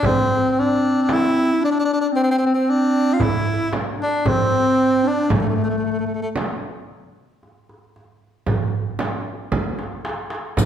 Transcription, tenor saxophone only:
0.06 0.50 C4 medium
0.50 0.61 C4 medium
0.59 1.03 D4 medium
1.03 1.14 D4 medium
1.12 1.63 E4 medium
1.65 1.70 D4 medium
1.71 1.77 D4 medium
1.79 1.84 D4 medium
1.85 1.92 D4 medium
1.93 1.99 D4 medium
2.01 2.07 D4 medium
2.16 2.22 C4 medium
2.23 2.30 C4 medium
2.31 2.37 C4 medium
2.38 2.45 C4 medium
2.46 2.52 C4 medium
2.54 2.71 C4 medium
2.70 3.15 D4 medium
3.13 3.24 F4 medium
3.23 3.73 E4 medium
4.02 4.29 D4 medium
4.28 5.09 C4 medium
5.07 5.32 D4 medium
5.34 5.39 A3 medium
5.41 5.47 A3 soft
5.49 5.55 A3 soft
5.56 5.62 A3 soft
5.64 5.69 A3 soft
5.70 5.76 A3 soft
5.78 5.84 A3 soft
5.85 5.91 A3 soft
5.92 5.98 A3 soft
5.99 6.06 A3 soft
6.07 6.13 A3 soft
6.14 6.21 A3 soft
6.22 6.29 A3 medium

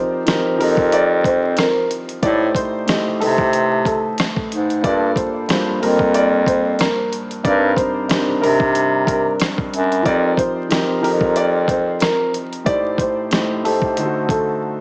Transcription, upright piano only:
0.00 0.56 C5 medium
0.60 0.89 A#4 medium
0.93 1.22 D5 medium
1.25 1.54 C5 medium
1.58 1.87 A#4 medium
2.23 2.52 D5 loud
2.56 3.17 C5 medium
3.20 3.82 A4 medium
3.86 4.15 A4 medium
4.84 5.13 D5 loud
5.16 5.77 C5 medium
5.82 6.11 A#4 medium
6.15 6.44 D5 medium
6.47 6.76 C5 medium
6.80 7.09 A#4 medium
7.45 7.74 D5 loud
7.77 8.38 C5 medium
8.42 9.03 A#4 medium
9.07 9.37 A#4 medium
10.06 10.35 D5 loud
10.38 10.99 C5 medium
11.03 11.32 A#4 medium
11.36 11.66 D5 loud
11.69 11.98 C5 medium
12.01 12.30 A#4 medium
12.66 12.95 D5 loud
12.99 13.60 C5 medium
13.65 14.26 A4 medium
14.30 14.59 A4 medium

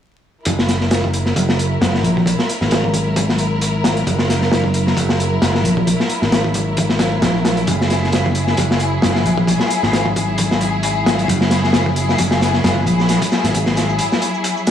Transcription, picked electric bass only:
0.46 1.32 F#1 medium
1.36 1.77 F#1 medium
1.81 2.04 F#1 medium
2.04 2.33 A#1 medium
2.61 4.02 G#1 medium
4.07 4.93 F#1 medium
4.97 5.38 F#1 medium
5.42 5.64 F#1 medium
5.64 5.94 A#1 medium
6.22 7.22 G#1 medium
7.22 7.63 A#1 loud
7.68 8.54 F#1 medium
8.58 8.99 F#1 medium
9.03 9.25 F#1 medium
9.25 9.55 A#1 medium
9.83 11.24 G#1 medium
11.28 12.14 F#1 medium
12.19 12.60 F#1 medium
12.64 12.87 F#1 medium
12.87 13.16 A#1 medium
13.44 13.99 G#1 medium

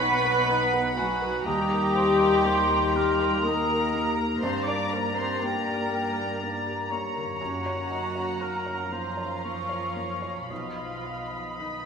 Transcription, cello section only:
0.00 0.98 B3 medium
0.98 1.46 F#3 medium
1.47 3.40 G3 medium
3.44 4.43 A#3 medium
4.43 4.67 C4 medium
4.68 4.92 D4 medium
4.93 5.17 A#3 medium
5.17 5.42 C4 medium
5.43 6.91 A#3 medium
7.40 8.88 F#3 medium
8.92 10.49 F3 medium
10.51 11.57 F3 soft
11.59 11.86 D#3 soft

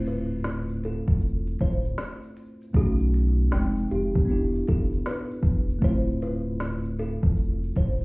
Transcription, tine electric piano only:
0.00 2.69 A3 medium
0.00 2.70 C4 medium
0.00 2.71 E4 medium
0.00 2.72 F4 medium
2.73 3.51 A3 medium
2.73 3.51 C#4 medium
2.73 3.51 D#4 medium
2.73 3.52 F#4 medium
3.50 3.59 G3 soft
3.50 4.28 C4 medium
3.50 4.29 D#4 medium
3.50 4.29 G5 medium
3.57 4.31 G#3 medium
4.25 5.77 B3 medium
4.25 5.79 D4 medium
4.29 5.79 E4 medium
4.29 5.81 G4 medium
5.79 8.05 A3 medium
5.79 8.05 C4 medium
5.83 8.05 E4 medium
5.83 8.05 F4 medium

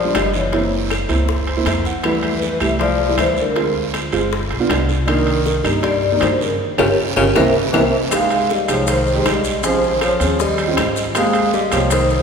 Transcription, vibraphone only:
0.00 0.13 D5 loud
0.16 0.35 D#5 medium
0.36 0.70 C#5 medium
2.04 2.63 B4 medium
2.61 2.79 E5 medium
2.81 3.20 D5 loud
3.19 3.38 C5 medium
3.40 3.74 A#4 medium
5.09 5.61 A#4 medium
5.64 5.84 D#5 medium
5.83 6.19 D5 loud
6.22 6.30 C5 medium
6.40 6.58 A#4 medium
6.79 6.91 G4 medium
6.79 6.91 A#4 medium
6.79 6.91 C#5 medium
7.17 7.29 G4 medium
7.17 7.29 A#4 medium
7.17 7.29 C#5 medium
7.37 7.49 A#4 loud
7.37 7.49 C5 medium
7.37 7.49 E5 medium
7.75 7.87 A#4 medium
7.75 7.87 C5 medium
7.75 7.87 E5 medium
8.14 8.48 F5 loud
8.53 8.69 D#5 medium
8.71 8.90 C#5 medium
8.90 9.24 C5 medium
9.28 9.62 D#5 medium
9.66 9.94 C5 medium
9.95 10.02 C5 medium
10.03 10.41 C#5 medium
10.41 10.93 D#5 loud
11.17 11.52 F5 medium
11.54 11.71 D#5 medium
11.73 11.90 C#5 medium
11.92 12.22 C5 medium

